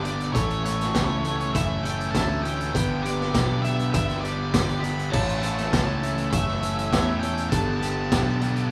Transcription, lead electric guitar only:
0.02 D5
0.33 C#5
0.64 C#5
1.53 E5
1.84 G5
2.11 A5
2.43 G5
2.73 G5
3.02 D5
3.62 E5
3.93 E5
4.21 D5
4.80 B5
5.10 A5
5.42 A5
6.31 E5
7.19 G5
7.50 A5
7.77 A5

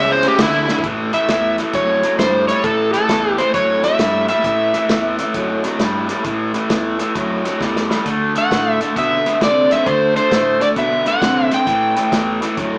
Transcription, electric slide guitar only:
0.12 C5
0.28 G4
0.43 E4
1.14 E5
1.75 C#5
2.19 C5
2.48 C#5
2.64 A4
2.93 A4
3.38 C5
3.55 C#5
3.84 E5
4.29 E5
8.38 F#5
8.98 E5
9.44 D5
9.72 E5
9.86 C5
10.17 C5
10.62 D5
10.78 E5
11.08 F#5
11.54 G5

